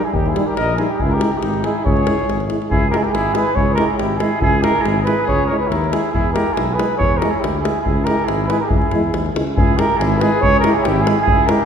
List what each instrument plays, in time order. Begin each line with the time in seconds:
0.03 trumpet E4, cornet G#4
0.13 tuba D#2, trumpet D#4, cornet G4, davul low
0.26 trumpet E4, cornet G#4, davul high
0.35 euphonium G3, trombone D#4, davul high
0.47 trumpet G4, cornet A#4, davul high
0.56 tuba A#1, trumpet A#4, cornet D#5, davul high
0.69 davul high
0.76 euphonium G3, trombone D#4, trumpet E4, cornet G#4, davul high
0.89 trumpet D#4, cornet G4
0.99 tuba C#2, trumpet E4, cornet G#4, davul low
1.09 cornet A#4, davul high
1.14 trumpet G4
1.20 euphonium G#3, trombone E4, davul high
1.32 cornet G4, davul high
1.38 trumpet D#4
1.43 tuba G#1, davul high
1.54 davul high
1.62 euphonium G#3, trombone E4, cornet G#4, davul high
1.66 trumpet E4
1.84 tuba C#2, trumpet G#4, cornet C#5, davul low
1.97 davul high
2.07 euphonium G#3, trombone E4, davul high
2.19 davul high
2.28 tuba G#1, davul high
2.40 davul high
2.49 euphonium G#3, trombone E4, davul high
2.62 davul high
2.69 tuba C#2, trumpet E4, cornet G#4, davul low
2.90 trombone E4, trumpet G4, cornet A#4, davul high
2.94 euphonium G#3, trumpet E4, cornet G#4
3.03 trumpet G4, cornet A#4, davul high
3.12 tuba G#1, trumpet E4, cornet G#4, davul high
3.34 euphonium G#3, trombone E4, trumpet G#4, cornet B4, davul high
3.55 tuba C#2, trumpet G#4, cornet C#5, davul low
3.74 trombone E4, cornet A#4, davul high
3.79 euphonium G#3, trumpet G4
3.87 trumpet E4, cornet G#4, davul high
3.97 tuba G#1, trumpet E4, cornet G4, davul high
4.17 trumpet E4, cornet G#4, davul high
4.21 euphonium G#3, trombone E4
4.41 tuba C#2, trumpet E4, cornet G#4, davul low
4.60 trumpet G4, cornet A#4
4.64 euphonium G#3, trombone E4, davul high
4.76 trumpet E4, davul high
4.81 cornet G#4
4.85 tuba G#1, davul high
5.02 trombone E4, trumpet G#4, cornet B4
5.07 euphonium G#3, davul high
5.23 trumpet G#4
5.28 tuba C#2, cornet C#5, davul low
5.46 trombone E4, trumpet A#4, cornet C#5
5.51 euphonium G#3
5.57 trumpet G#4, cornet B4
5.68 tuba D#2, trumpet E4, cornet A#4
5.72 davul high
5.84 davul high
5.89 euphonium G#3, trumpet E4, trombone E4, cornet G#4
5.93 davul high
6.04 davul high
6.12 tuba E2, trumpet E4, cornet G#4, davul low
6.33 euphonium G#3, trombone E4, trumpet G4, cornet A#4, davul high
6.47 davul high
6.53 tuba B1, trumpet E4, cornet G#4
6.57 davul high
6.74 trombone E4, trumpet G#4, cornet B4
6.79 euphonium G#3, davul high
6.95 trumpet G#4, cornet C#5
6.99 tuba E2, davul low
7.17 trombone E4, trumpet G4, cornet A#4
7.22 euphonium G#3, davul high
7.28 trumpet E4, cornet G#4
7.34 davul high
7.39 trumpet E4, cornet G4
7.44 tuba D2, davul high
7.60 trumpet E4, trombone E4, cornet G#4
7.65 euphonium G#3, davul high
7.80 trumpet E4, cornet G#4
7.86 tuba C#2, davul low
8.04 trombone E4, trumpet G4, cornet A#4, davul high
8.08 euphonium G#3
8.19 davul high
8.25 tuba G#1, trumpet E4, cornet G#4, davul high
8.46 cornet B4, davul high
8.50 euphonium G#3, trombone E4, trumpet G#4
8.60 trumpet G4, cornet A#4
8.66 cornet G#4
8.70 tuba C#2, trumpet E4, davul low
8.82 davul high
8.91 tuba E2, euphonium G#3, trombone E4, davul high
9.04 davul high
9.14 tuba D#2, davul high
9.26 davul high
9.34 tuba C#2, euphonium G#3, trombone E4, davul high
9.47 davul high
9.55 tuba C#2, trumpet E4, cornet G#4, davul low
9.77 euphonium G#3, trombone E4, trumpet G4, cornet A#4, davul high
9.90 davul high
9.97 tuba G#1, trumpet E4, cornet G#4
10.01 davul high
10.19 euphonium G#3, trombone E4, trumpet G#4, cornet B4, davul high
10.41 tuba C#2, trumpet G#4, cornet C#5, davul low
10.60 cornet A#4
10.64 euphonium G#3, trombone E4, trumpet G4, davul high
10.73 cornet G#4, davul high
10.78 trumpet E4
10.84 tuba G#1, trumpet E4, cornet G4, davul high
11.01 cornet G#4
11.07 euphonium G#3, trombone E4, trumpet E4, davul high
11.22 cornet G#4
11.27 tuba C#2, trumpet E4, davul low
11.46 euphonium G#3, trombone E4, cornet A#4, davul high
11.51 trumpet G4
11.61 davul high